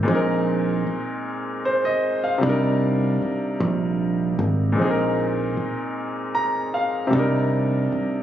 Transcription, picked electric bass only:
0, 0, Header, 1, 3, 480
1, 0, Start_track
1, 0, Tempo, 784314
1, 37, Time_signature, 6, 3, 24, 8
1, 5036, End_track
2, 0, Start_track
2, 0, Title_t, "Picked electric bass"
2, 0, Program_c, 0, 34
2, 48, Note_on_c, 0, 34, 110
2, 498, Note_off_c, 0, 34, 0
2, 1487, Note_on_c, 0, 36, 109
2, 1938, Note_off_c, 0, 36, 0
2, 2206, Note_on_c, 0, 34, 98
2, 2657, Note_off_c, 0, 34, 0
2, 2685, Note_on_c, 0, 32, 93
2, 2926, Note_off_c, 0, 32, 0
2, 2926, Note_on_c, 0, 34, 97
2, 3377, Note_off_c, 0, 34, 0
2, 4363, Note_on_c, 0, 36, 102
2, 4816, Note_off_c, 0, 36, 0
2, 5036, End_track
3, 0, Start_track
3, 0, Title_t, "Muted picked electric bass strokes"
3, 531, Note_on_c, 9, 29, 53
3, 592, Note_off_c, 9, 29, 0
3, 1970, Note_on_c, 9, 29, 57
3, 2031, Note_off_c, 9, 29, 0
3, 3410, Note_on_c, 9, 29, 49
3, 3471, Note_off_c, 9, 29, 0
3, 4849, Note_on_c, 9, 29, 50
3, 4911, Note_off_c, 9, 29, 0
3, 5036, End_track
0, 0, End_of_file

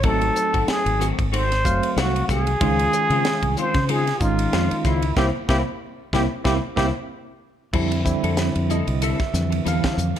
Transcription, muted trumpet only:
0, 0, Header, 1, 2, 480
1, 0, Start_track
1, 0, Tempo, 641711
1, 31, Time_signature, 4, 2, 24, 8
1, 7625, End_track
2, 0, Start_track
2, 0, Title_t, "Muted trumpet"
2, 0, Program_c, 0, 59
2, 36, Note_on_c, 0, 69, 110
2, 527, Note_on_c, 0, 68, 91
2, 538, Note_off_c, 0, 69, 0
2, 799, Note_off_c, 0, 68, 0
2, 1004, Note_on_c, 0, 72, 103
2, 1494, Note_on_c, 0, 66, 85
2, 1506, Note_off_c, 0, 72, 0
2, 1720, Note_off_c, 0, 66, 0
2, 1725, Note_on_c, 0, 68, 110
2, 2646, Note_off_c, 0, 68, 0
2, 2683, Note_on_c, 0, 72, 89
2, 2921, Note_on_c, 0, 68, 98
2, 2932, Note_off_c, 0, 72, 0
2, 3150, Note_on_c, 0, 65, 79
2, 3161, Note_off_c, 0, 68, 0
2, 3633, Note_on_c, 0, 64, 80
2, 3645, Note_off_c, 0, 65, 0
2, 3863, Note_off_c, 0, 64, 0
2, 3868, Note_on_c, 0, 67, 95
2, 3932, Note_off_c, 0, 67, 0
2, 4102, Note_on_c, 0, 67, 82
2, 4168, Note_off_c, 0, 67, 0
2, 4592, Note_on_c, 0, 67, 83
2, 4655, Note_off_c, 0, 67, 0
2, 4830, Note_on_c, 0, 67, 91
2, 4893, Note_off_c, 0, 67, 0
2, 5062, Note_on_c, 0, 67, 85
2, 5128, Note_off_c, 0, 67, 0
2, 7625, End_track
0, 0, End_of_file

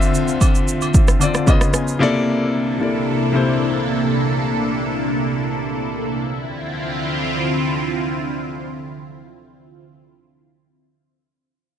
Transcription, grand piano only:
0, 0, Header, 1, 2, 480
1, 0, Start_track
1, 0, Key_signature, -1, "minor"
1, 0, Tempo, 530973
1, 1812, Time_signature, 4, 2, 24, 8
1, 10654, End_track
2, 0, Start_track
2, 0, Title_t, "Grand piano"
2, 0, Program_c, 0, 0
2, 0, Control_c, 0, 64, 127
2, 0, Note_on_c, 0, 50, 112
2, 0, Note_on_c, 0, 60, 107
2, 0, Note_on_c, 0, 65, 106
2, 0, Note_on_c, 0, 74, 86
2, 0, Note_on_c, 0, 76, 127
2, 655, Note_off_c, 0, 50, 0
2, 661, Note_off_c, 0, 60, 0
2, 667, Note_off_c, 0, 65, 0
2, 672, Note_off_c, 0, 76, 0
2, 1080, Note_on_c, 0, 50, 85
2, 1090, Note_on_c, 0, 60, 79
2, 1102, Note_on_c, 0, 65, 78
2, 1112, Note_off_c, 0, 74, 0
2, 1112, Note_on_c, 0, 74, 94
2, 1321, Note_on_c, 0, 49, 90
2, 1325, Note_off_c, 0, 50, 0
2, 1329, Note_off_c, 0, 65, 0
2, 1331, Note_off_c, 0, 60, 0
2, 1331, Note_on_c, 0, 59, 79
2, 1336, Note_on_c, 0, 77, 74
2, 1342, Note_off_c, 0, 74, 0
2, 1343, Note_on_c, 0, 65, 85
2, 1344, Control_c, 0, 64, 0
2, 1353, Note_on_c, 0, 75, 102
2, 1493, Control_c, 0, 64, 127
2, 1557, Note_off_c, 0, 77, 0
2, 1578, Note_on_c, 0, 80, 73
2, 1714, Note_off_c, 0, 49, 0
2, 1719, Note_off_c, 0, 59, 0
2, 1725, Note_off_c, 0, 65, 0
2, 1730, Note_off_c, 0, 75, 0
2, 1798, Note_off_c, 0, 80, 0
2, 1802, Note_on_c, 0, 48, 115
2, 1810, Note_on_c, 0, 58, 107
2, 1818, Note_on_c, 0, 64, 105
2, 1822, Control_c, 0, 64, 0
2, 1826, Note_on_c, 0, 69, 108
2, 1834, Note_on_c, 0, 74, 127
2, 1959, Control_c, 0, 64, 127
2, 2386, Note_off_c, 0, 48, 0
2, 2391, Note_off_c, 0, 58, 0
2, 2394, Note_off_c, 0, 64, 0
2, 2398, Note_off_c, 0, 69, 0
2, 2402, Note_off_c, 0, 74, 0
2, 2522, Note_on_c, 0, 48, 78
2, 2531, Note_on_c, 0, 58, 69
2, 2539, Note_on_c, 0, 64, 69
2, 2547, Note_on_c, 0, 69, 73
2, 2555, Note_on_c, 0, 74, 84
2, 2914, Note_off_c, 0, 48, 0
2, 2919, Note_off_c, 0, 58, 0
2, 2923, Note_off_c, 0, 64, 0
2, 2927, Note_off_c, 0, 69, 0
2, 2931, Note_off_c, 0, 74, 0
2, 3000, Note_on_c, 0, 48, 88
2, 3008, Note_on_c, 0, 58, 78
2, 3017, Note_on_c, 0, 64, 81
2, 3025, Note_on_c, 0, 69, 81
2, 3034, Note_on_c, 0, 72, 94
2, 3586, Note_off_c, 0, 48, 0
2, 3590, Note_off_c, 0, 58, 0
2, 3594, Note_off_c, 0, 64, 0
2, 3598, Note_off_c, 0, 69, 0
2, 3602, Note_off_c, 0, 72, 0
2, 3745, Control_c, 0, 64, 0
2, 10654, End_track
0, 0, End_of_file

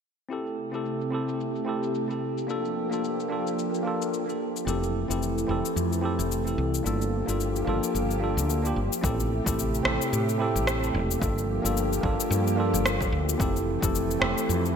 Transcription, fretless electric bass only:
0, 0, Header, 1, 2, 480
1, 0, Start_track
1, 0, Tempo, 545455
1, 271, Time_signature, 4, 2, 24, 8
1, 12987, End_track
2, 0, Start_track
2, 0, Title_t, "Fretless electric bass"
2, 0, Program_c, 0, 35
2, 4108, Note_on_c, 0, 29, 88
2, 4437, Note_off_c, 0, 29, 0
2, 4487, Note_on_c, 0, 29, 79
2, 4794, Note_off_c, 0, 29, 0
2, 4831, Note_on_c, 0, 29, 77
2, 4937, Note_off_c, 0, 29, 0
2, 5071, Note_on_c, 0, 41, 84
2, 5446, Note_on_c, 0, 29, 81
2, 5459, Note_off_c, 0, 41, 0
2, 5753, Note_off_c, 0, 29, 0
2, 5790, Note_on_c, 0, 36, 93
2, 5984, Note_off_c, 0, 36, 0
2, 6034, Note_on_c, 0, 31, 91
2, 6360, Note_off_c, 0, 31, 0
2, 6409, Note_on_c, 0, 31, 80
2, 6715, Note_off_c, 0, 31, 0
2, 6751, Note_on_c, 0, 31, 86
2, 6857, Note_off_c, 0, 31, 0
2, 6993, Note_on_c, 0, 31, 80
2, 7367, Note_on_c, 0, 38, 93
2, 7380, Note_off_c, 0, 31, 0
2, 7674, Note_off_c, 0, 38, 0
2, 7711, Note_on_c, 0, 31, 81
2, 7817, Note_off_c, 0, 31, 0
2, 7952, Note_on_c, 0, 33, 93
2, 8279, Note_off_c, 0, 33, 0
2, 8328, Note_on_c, 0, 33, 77
2, 8634, Note_off_c, 0, 33, 0
2, 8669, Note_on_c, 0, 33, 81
2, 8776, Note_off_c, 0, 33, 0
2, 8912, Note_on_c, 0, 45, 92
2, 9288, Note_on_c, 0, 33, 84
2, 9302, Note_off_c, 0, 45, 0
2, 9595, Note_off_c, 0, 33, 0
2, 9631, Note_on_c, 0, 28, 103
2, 9825, Note_off_c, 0, 28, 0
2, 9870, Note_on_c, 0, 31, 92
2, 10198, Note_off_c, 0, 31, 0
2, 10247, Note_on_c, 0, 31, 76
2, 10554, Note_off_c, 0, 31, 0
2, 10589, Note_on_c, 0, 31, 83
2, 10696, Note_off_c, 0, 31, 0
2, 10829, Note_on_c, 0, 43, 98
2, 11207, Note_on_c, 0, 31, 85
2, 11220, Note_off_c, 0, 43, 0
2, 11514, Note_off_c, 0, 31, 0
2, 11549, Note_on_c, 0, 38, 99
2, 11744, Note_off_c, 0, 38, 0
2, 11790, Note_on_c, 0, 29, 93
2, 12118, Note_off_c, 0, 29, 0
2, 12166, Note_on_c, 0, 29, 83
2, 12473, Note_off_c, 0, 29, 0
2, 12508, Note_on_c, 0, 29, 86
2, 12615, Note_off_c, 0, 29, 0
2, 12753, Note_on_c, 0, 41, 93
2, 12987, Note_off_c, 0, 41, 0
2, 12987, End_track
0, 0, End_of_file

